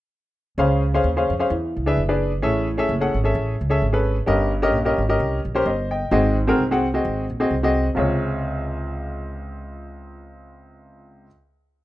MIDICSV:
0, 0, Header, 1, 3, 480
1, 0, Start_track
1, 0, Key_signature, -5, "major"
1, 0, Tempo, 462250
1, 602, Time_signature, 4, 2, 24, 8
1, 12298, End_track
2, 0, Start_track
2, 0, Title_t, "Grand piano"
2, 0, Program_c, 0, 0
2, 601, Note_on_c, 0, 61, 70
2, 610, Note_on_c, 0, 68, 64
2, 611, Note_on_c, 0, 49, 68
2, 611, Note_on_c, 0, 72, 66
2, 616, Note_on_c, 0, 77, 85
2, 849, Note_off_c, 0, 61, 0
2, 854, Note_off_c, 0, 68, 0
2, 854, Note_off_c, 0, 72, 0
2, 857, Note_off_c, 0, 77, 0
2, 978, Note_on_c, 0, 61, 75
2, 981, Note_on_c, 0, 72, 68
2, 982, Note_on_c, 0, 68, 69
2, 990, Note_on_c, 0, 77, 81
2, 1115, Note_off_c, 0, 61, 0
2, 1117, Note_off_c, 0, 68, 0
2, 1117, Note_off_c, 0, 72, 0
2, 1122, Note_off_c, 0, 77, 0
2, 1211, Note_on_c, 0, 61, 71
2, 1215, Note_on_c, 0, 72, 65
2, 1216, Note_on_c, 0, 68, 63
2, 1223, Note_on_c, 0, 77, 74
2, 1312, Note_off_c, 0, 49, 0
2, 1372, Note_off_c, 0, 61, 0
2, 1374, Note_off_c, 0, 72, 0
2, 1375, Note_off_c, 0, 68, 0
2, 1378, Note_off_c, 0, 77, 0
2, 1448, Note_on_c, 0, 61, 69
2, 1451, Note_on_c, 0, 68, 58
2, 1455, Note_on_c, 0, 72, 66
2, 1459, Note_on_c, 0, 77, 76
2, 1559, Note_off_c, 0, 61, 0
2, 1560, Note_off_c, 0, 68, 0
2, 1562, Note_off_c, 0, 72, 0
2, 1564, Note_off_c, 0, 77, 0
2, 1564, Note_on_c, 0, 52, 55
2, 1934, Note_on_c, 0, 62, 67
2, 1940, Note_on_c, 0, 68, 66
2, 1946, Note_on_c, 0, 71, 58
2, 1947, Note_on_c, 0, 76, 78
2, 2074, Note_off_c, 0, 62, 0
2, 2077, Note_off_c, 0, 68, 0
2, 2079, Note_off_c, 0, 71, 0
2, 2080, Note_off_c, 0, 76, 0
2, 2167, Note_on_c, 0, 68, 65
2, 2168, Note_on_c, 0, 62, 70
2, 2170, Note_on_c, 0, 71, 64
2, 2176, Note_on_c, 0, 74, 78
2, 2268, Note_off_c, 0, 52, 0
2, 2396, Note_off_c, 0, 68, 0
2, 2397, Note_off_c, 0, 62, 0
2, 2398, Note_off_c, 0, 71, 0
2, 2401, Note_off_c, 0, 74, 0
2, 2517, Note_on_c, 0, 68, 73
2, 2518, Note_on_c, 0, 61, 72
2, 2522, Note_on_c, 0, 45, 64
2, 2525, Note_on_c, 0, 69, 66
2, 2527, Note_on_c, 0, 76, 80
2, 2767, Note_off_c, 0, 68, 0
2, 2768, Note_off_c, 0, 61, 0
2, 2771, Note_off_c, 0, 69, 0
2, 2772, Note_off_c, 0, 76, 0
2, 2882, Note_on_c, 0, 61, 72
2, 2887, Note_on_c, 0, 68, 76
2, 2895, Note_on_c, 0, 69, 66
2, 2898, Note_on_c, 0, 76, 82
2, 3027, Note_off_c, 0, 61, 0
2, 3030, Note_off_c, 0, 68, 0
2, 3034, Note_off_c, 0, 69, 0
2, 3035, Note_off_c, 0, 76, 0
2, 3121, Note_on_c, 0, 61, 69
2, 3127, Note_on_c, 0, 68, 62
2, 3130, Note_on_c, 0, 69, 66
2, 3131, Note_on_c, 0, 78, 76
2, 3227, Note_off_c, 0, 45, 0
2, 3287, Note_off_c, 0, 61, 0
2, 3290, Note_off_c, 0, 68, 0
2, 3291, Note_off_c, 0, 69, 0
2, 3292, Note_off_c, 0, 78, 0
2, 3362, Note_on_c, 0, 61, 69
2, 3371, Note_on_c, 0, 68, 63
2, 3372, Note_on_c, 0, 69, 64
2, 3377, Note_on_c, 0, 76, 70
2, 3672, Note_off_c, 0, 61, 0
2, 3676, Note_off_c, 0, 68, 0
2, 3677, Note_off_c, 0, 69, 0
2, 3680, Note_off_c, 0, 76, 0
2, 3839, Note_on_c, 0, 61, 72
2, 3844, Note_on_c, 0, 68, 68
2, 3846, Note_on_c, 0, 69, 69
2, 3850, Note_on_c, 0, 76, 77
2, 3985, Note_off_c, 0, 61, 0
2, 3988, Note_off_c, 0, 68, 0
2, 3988, Note_off_c, 0, 69, 0
2, 3991, Note_off_c, 0, 76, 0
2, 4078, Note_on_c, 0, 68, 64
2, 4079, Note_on_c, 0, 61, 70
2, 4087, Note_on_c, 0, 69, 66
2, 4088, Note_on_c, 0, 71, 75
2, 4311, Note_off_c, 0, 61, 0
2, 4311, Note_off_c, 0, 68, 0
2, 4315, Note_off_c, 0, 69, 0
2, 4316, Note_off_c, 0, 71, 0
2, 4428, Note_on_c, 0, 61, 72
2, 4433, Note_on_c, 0, 67, 67
2, 4435, Note_on_c, 0, 70, 68
2, 4438, Note_on_c, 0, 43, 63
2, 4442, Note_on_c, 0, 75, 81
2, 4681, Note_off_c, 0, 61, 0
2, 4684, Note_off_c, 0, 67, 0
2, 4685, Note_off_c, 0, 70, 0
2, 4688, Note_off_c, 0, 75, 0
2, 4800, Note_on_c, 0, 61, 83
2, 4804, Note_on_c, 0, 67, 72
2, 4805, Note_on_c, 0, 70, 67
2, 4810, Note_on_c, 0, 75, 90
2, 4945, Note_off_c, 0, 61, 0
2, 4947, Note_off_c, 0, 67, 0
2, 4947, Note_off_c, 0, 70, 0
2, 4950, Note_off_c, 0, 75, 0
2, 5037, Note_on_c, 0, 67, 68
2, 5040, Note_on_c, 0, 61, 69
2, 5042, Note_on_c, 0, 70, 65
2, 5048, Note_on_c, 0, 75, 79
2, 5143, Note_off_c, 0, 43, 0
2, 5203, Note_off_c, 0, 67, 0
2, 5205, Note_off_c, 0, 61, 0
2, 5206, Note_off_c, 0, 70, 0
2, 5209, Note_off_c, 0, 75, 0
2, 5284, Note_on_c, 0, 61, 65
2, 5288, Note_on_c, 0, 67, 67
2, 5291, Note_on_c, 0, 70, 67
2, 5292, Note_on_c, 0, 75, 80
2, 5591, Note_off_c, 0, 61, 0
2, 5594, Note_off_c, 0, 67, 0
2, 5595, Note_off_c, 0, 70, 0
2, 5595, Note_off_c, 0, 75, 0
2, 5759, Note_on_c, 0, 61, 73
2, 5765, Note_on_c, 0, 67, 68
2, 5769, Note_on_c, 0, 70, 66
2, 5770, Note_on_c, 0, 72, 82
2, 5870, Note_off_c, 0, 72, 0
2, 5879, Note_on_c, 0, 75, 59
2, 5886, Note_on_c, 0, 72, 56
2, 5904, Note_off_c, 0, 61, 0
2, 5907, Note_off_c, 0, 67, 0
2, 5909, Note_off_c, 0, 70, 0
2, 6126, Note_off_c, 0, 75, 0
2, 6135, Note_off_c, 0, 72, 0
2, 6136, Note_on_c, 0, 79, 59
2, 6141, Note_on_c, 0, 75, 50
2, 6341, Note_off_c, 0, 75, 0
2, 6349, Note_on_c, 0, 60, 73
2, 6350, Note_on_c, 0, 66, 67
2, 6352, Note_on_c, 0, 44, 63
2, 6356, Note_on_c, 0, 68, 70
2, 6356, Note_on_c, 0, 75, 80
2, 6596, Note_off_c, 0, 79, 0
2, 6601, Note_off_c, 0, 60, 0
2, 6601, Note_off_c, 0, 66, 0
2, 6605, Note_off_c, 0, 68, 0
2, 6605, Note_off_c, 0, 75, 0
2, 6723, Note_on_c, 0, 60, 76
2, 6730, Note_on_c, 0, 66, 70
2, 6730, Note_on_c, 0, 68, 72
2, 6735, Note_on_c, 0, 70, 84
2, 6865, Note_off_c, 0, 60, 0
2, 6869, Note_off_c, 0, 66, 0
2, 6869, Note_off_c, 0, 68, 0
2, 6872, Note_off_c, 0, 70, 0
2, 6969, Note_on_c, 0, 60, 71
2, 6971, Note_on_c, 0, 66, 64
2, 6973, Note_on_c, 0, 68, 65
2, 6981, Note_on_c, 0, 78, 75
2, 7059, Note_off_c, 0, 44, 0
2, 7128, Note_off_c, 0, 60, 0
2, 7129, Note_off_c, 0, 66, 0
2, 7130, Note_off_c, 0, 68, 0
2, 7134, Note_off_c, 0, 78, 0
2, 7205, Note_on_c, 0, 60, 68
2, 7209, Note_on_c, 0, 66, 58
2, 7212, Note_on_c, 0, 68, 55
2, 7213, Note_on_c, 0, 75, 66
2, 7511, Note_off_c, 0, 60, 0
2, 7513, Note_off_c, 0, 66, 0
2, 7515, Note_off_c, 0, 68, 0
2, 7515, Note_off_c, 0, 75, 0
2, 7683, Note_on_c, 0, 60, 71
2, 7686, Note_on_c, 0, 66, 58
2, 7686, Note_on_c, 0, 68, 65
2, 7693, Note_on_c, 0, 75, 70
2, 7825, Note_off_c, 0, 60, 0
2, 7827, Note_off_c, 0, 66, 0
2, 7827, Note_off_c, 0, 68, 0
2, 7830, Note_off_c, 0, 75, 0
2, 7925, Note_on_c, 0, 60, 70
2, 7926, Note_on_c, 0, 66, 69
2, 7935, Note_on_c, 0, 68, 60
2, 7936, Note_on_c, 0, 75, 82
2, 8152, Note_off_c, 0, 60, 0
2, 8153, Note_off_c, 0, 66, 0
2, 8157, Note_off_c, 0, 68, 0
2, 8158, Note_off_c, 0, 75, 0
2, 8252, Note_on_c, 0, 48, 68
2, 8266, Note_on_c, 0, 65, 61
2, 8274, Note_on_c, 0, 37, 71
2, 8281, Note_on_c, 0, 68, 66
2, 8294, Note_on_c, 0, 73, 74
2, 11669, Note_off_c, 0, 48, 0
2, 11683, Note_off_c, 0, 65, 0
2, 11691, Note_off_c, 0, 37, 0
2, 11698, Note_off_c, 0, 68, 0
2, 11711, Note_off_c, 0, 73, 0
2, 12298, End_track
3, 0, Start_track
3, 0, Title_t, "Upright bass"
3, 0, Program_c, 1, 32
3, 599, Note_on_c, 1, 37, 81
3, 1009, Note_off_c, 1, 37, 0
3, 1078, Note_on_c, 1, 39, 78
3, 1307, Note_off_c, 1, 39, 0
3, 1348, Note_on_c, 1, 41, 76
3, 1530, Note_off_c, 1, 41, 0
3, 1560, Note_on_c, 1, 40, 82
3, 1833, Note_on_c, 1, 37, 71
3, 1849, Note_off_c, 1, 40, 0
3, 2047, Note_on_c, 1, 30, 68
3, 2062, Note_off_c, 1, 37, 0
3, 2526, Note_off_c, 1, 30, 0
3, 2526, Note_on_c, 1, 33, 83
3, 2932, Note_off_c, 1, 33, 0
3, 2998, Note_on_c, 1, 30, 80
3, 3226, Note_off_c, 1, 30, 0
3, 3263, Note_on_c, 1, 32, 74
3, 3447, Note_off_c, 1, 32, 0
3, 3477, Note_on_c, 1, 33, 84
3, 3705, Note_off_c, 1, 33, 0
3, 3748, Note_on_c, 1, 37, 74
3, 3929, Note_off_c, 1, 37, 0
3, 3964, Note_on_c, 1, 32, 70
3, 4370, Note_off_c, 1, 32, 0
3, 4439, Note_on_c, 1, 31, 77
3, 4909, Note_off_c, 1, 31, 0
3, 4909, Note_on_c, 1, 34, 70
3, 5140, Note_off_c, 1, 34, 0
3, 5173, Note_on_c, 1, 32, 72
3, 5360, Note_off_c, 1, 32, 0
3, 5397, Note_on_c, 1, 36, 82
3, 5624, Note_off_c, 1, 36, 0
3, 5658, Note_on_c, 1, 34, 71
3, 5842, Note_off_c, 1, 34, 0
3, 5872, Note_on_c, 1, 31, 79
3, 6282, Note_off_c, 1, 31, 0
3, 6347, Note_on_c, 1, 32, 78
3, 6759, Note_off_c, 1, 32, 0
3, 6832, Note_on_c, 1, 36, 68
3, 7242, Note_off_c, 1, 36, 0
3, 7319, Note_on_c, 1, 32, 79
3, 7544, Note_off_c, 1, 32, 0
3, 7578, Note_on_c, 1, 34, 67
3, 7762, Note_off_c, 1, 34, 0
3, 7794, Note_on_c, 1, 36, 69
3, 8203, Note_off_c, 1, 36, 0
3, 8270, Note_on_c, 1, 37, 68
3, 11686, Note_off_c, 1, 37, 0
3, 12298, End_track
0, 0, End_of_file